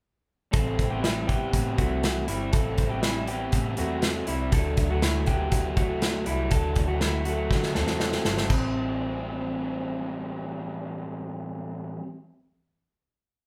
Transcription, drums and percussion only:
0.53 kick, closed hi-hat
0.79 kick, closed hi-hat
1.04 snare, closed hi-hat
1.29 kick, closed hi-hat
1.53 kick, closed hi-hat
1.78 kick, closed hi-hat
2.03 snare, closed hi-hat
2.28 closed hi-hat
2.53 kick, closed hi-hat
2.78 kick, closed hi-hat
3.03 snare, closed hi-hat
3.27 closed hi-hat
3.52 kick, closed hi-hat
3.77 closed hi-hat
4.02 snare, closed hi-hat
4.27 closed hi-hat
4.52 kick, closed hi-hat
4.77 kick, closed hi-hat
5.02 snare, closed hi-hat
5.26 kick, closed hi-hat
5.52 kick, closed hi-hat
5.77 kick, closed hi-hat
6.02 snare, closed hi-hat
6.26 closed hi-hat
6.51 kick, closed hi-hat
6.76 kick, closed hi-hat
7.01 snare, closed hi-hat
7.25 closed hi-hat
7.51 kick, snare
7.63 snare
7.75 snare
7.87 snare
8.00 snare
8.12 snare
8.25 snare
8.38 snare
8.50 kick, splash

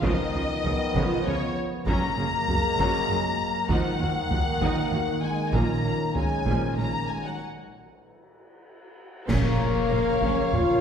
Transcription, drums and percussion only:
0.03 taiko
0.64 taiko low
0.95 taiko
1.87 taiko
2.48 taiko low
2.79 taiko
3.69 taiko
4.31 taiko low
4.61 taiko
5.53 taiko
6.15 taiko low
6.46 taiko
9.29 concert bass drum, taiko, crash
10.22 taiko
10.53 taiko low-mid

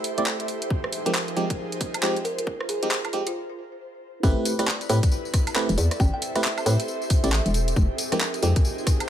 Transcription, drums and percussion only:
0.04 open hi-hat
0.18 closed hi-hat
0.26 clap
0.40 closed hi-hat
0.48 open hi-hat
0.62 closed hi-hat
0.70 kick
0.84 cross-stick
0.92 open hi-hat
1.06 closed hi-hat
1.15 clap
1.28 closed hi-hat
1.37 open hi-hat
1.50 kick, closed hi-hat
1.72 closed hi-hat
1.81 kick, open hi-hat
1.94 closed hi-hat, high woodblock
2.03 clap
2.16 closed hi-hat
2.25 open hi-hat
2.38 closed hi-hat
2.47 kick
2.60 cross-stick
2.69 open hi-hat
2.83 closed hi-hat
2.91 clap
3.05 cross-stick, closed hi-hat, high woodblock
3.13 open hi-hat
3.27 closed hi-hat
4.23 kick, tambourine
4.45 open hi-hat, tambourine
4.59 cross-stick, closed hi-hat, tambourine
4.67 clap, tambourine
4.81 closed hi-hat, tambourine
4.89 open hi-hat, tambourine
5.03 kick, closed hi-hat, tambourine
5.12 tambourine
5.25 tambourine
5.34 kick, cross-stick, open hi-hat, tambourine
5.47 closed hi-hat, tambourine, high woodblock
5.56 clap, tambourine
5.69 closed hi-hat, tambourine
5.78 open hi-hat, tambourine
5.91 cross-stick, closed hi-hat, tambourine
6.00 kick, tambourine
6.22 open hi-hat, tambourine
6.36 cross-stick, closed hi-hat, tambourine
6.44 clap, tambourine
6.58 closed hi-hat, tambourine, high woodblock
6.66 open hi-hat, tambourine
6.80 closed hi-hat, tambourine
6.88 tambourine
7.02 tambourine
7.10 kick, open hi-hat, tambourine
7.24 closed hi-hat, tambourine
7.32 clap, tambourine
7.46 closed hi-hat, tambourine
7.54 open hi-hat, tambourine
7.68 closed hi-hat, tambourine
7.76 kick, tambourine
7.98 open hi-hat, tambourine
8.12 cross-stick, closed hi-hat, tambourine
8.21 clap, tambourine
8.34 closed hi-hat, tambourine
8.43 open hi-hat, tambourine
8.56 kick, closed hi-hat, tambourine
8.65 tambourine
8.78 tambourine
8.87 kick, cross-stick, open hi-hat, tambourine
9.00 closed hi-hat, tambourine, high woodblock

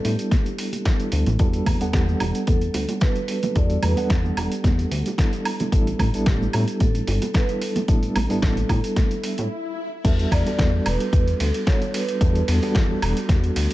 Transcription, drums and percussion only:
0.05 open hi-hat
0.19 closed hi-hat, shaker
0.31 kick, snare, closed hi-hat, high conga, shaker
0.46 closed hi-hat, shaker
0.58 open hi-hat
0.72 closed hi-hat, high conga, shaker
0.85 kick, snare, closed hi-hat, shaker
1.00 closed hi-hat, shaker
1.12 open hi-hat
1.26 closed hi-hat, high conga, low conga, shaker
1.39 kick, closed hi-hat, shaker
1.53 closed hi-hat, shaker
1.66 kick, open hi-hat, high conga, high woodblock
1.81 closed hi-hat, shaker
1.93 kick, snare, closed hi-hat, shaker
2.08 high conga, shaker
2.20 open hi-hat, high bongo, high woodblock
2.35 closed hi-hat, shaker
2.47 kick, closed hi-hat, high conga, shaker
2.61 closed hi-hat, shaker
2.74 open hi-hat, high bongo
2.88 closed hi-hat, high bongo, high conga, shaker
3.01 kick, snare, closed hi-hat, shaker
3.15 closed hi-hat, shaker
3.28 open hi-hat
3.43 closed hi-hat, high conga, low conga, shaker
3.56 kick, closed hi-hat, shaker
3.70 closed hi-hat, shaker
3.82 open hi-hat, high conga, high woodblock
3.97 open hi-hat, shaker
4.10 kick, snare, closed hi-hat, shaker
4.24 high conga, shaker
4.37 open hi-hat, high bongo, high woodblock
4.52 closed hi-hat, shaker
4.64 kick, snare, closed hi-hat, high conga, shaker
4.79 closed hi-hat, shaker
4.91 open hi-hat
5.06 closed hi-hat, high bongo, high conga, shaker
5.18 kick, snare, closed hi-hat, shaker
5.33 closed hi-hat, shaker
5.45 open hi-hat, high woodblock
5.60 closed hi-hat, high conga, low conga, shaker
5.72 kick, closed hi-hat, shaker
5.87 closed hi-hat, shaker
5.99 kick, open hi-hat, high conga, high woodblock
6.14 closed hi-hat, shaker
6.26 kick, snare, closed hi-hat, shaker
6.42 high conga, shaker
6.53 open hi-hat, high bongo, high woodblock
6.68 closed hi-hat, shaker
6.80 kick, closed hi-hat, high conga, shaker
6.95 closed hi-hat, shaker
7.07 open hi-hat, high bongo
7.22 closed hi-hat, high bongo, high conga, shaker
7.34 kick, snare, closed hi-hat, shaker
7.49 closed hi-hat, shaker
7.62 open hi-hat
7.76 closed hi-hat, high conga, low conga, shaker
7.88 kick, closed hi-hat, shaker
8.03 closed hi-hat, shaker
8.16 open hi-hat, high conga, high woodblock
8.30 open hi-hat, shaker
8.42 kick, snare, closed hi-hat, shaker
8.57 closed hi-hat, high conga, shaker
8.69 kick, open hi-hat, high bongo, high woodblock
8.84 closed hi-hat, shaker
8.96 kick, snare, closed hi-hat, high conga, shaker
9.11 closed hi-hat, shaker
9.23 open hi-hat
9.38 closed hi-hat, high bongo, high conga, shaker
10.05 kick, closed hi-hat, crash
10.19 closed hi-hat
10.32 kick, open hi-hat, ride, high woodblock
10.47 closed hi-hat
10.59 kick, snare, closed hi-hat
10.86 open hi-hat, ride, high woodblock
11.00 closed hi-hat
11.13 kick, closed hi-hat
11.28 closed hi-hat
11.40 open hi-hat, ride
11.54 closed hi-hat
11.67 kick, snare, closed hi-hat
11.82 closed hi-hat
11.94 open hi-hat, ride
12.09 closed hi-hat
12.21 kick, closed hi-hat
12.35 closed hi-hat
12.48 open hi-hat, ride
12.63 open hi-hat
12.75 kick, snare, closed hi-hat
13.02 open hi-hat, ride, high woodblock
13.17 closed hi-hat
13.29 kick, snare, closed hi-hat
13.44 closed hi-hat
13.56 open hi-hat, ride
13.71 closed hi-hat

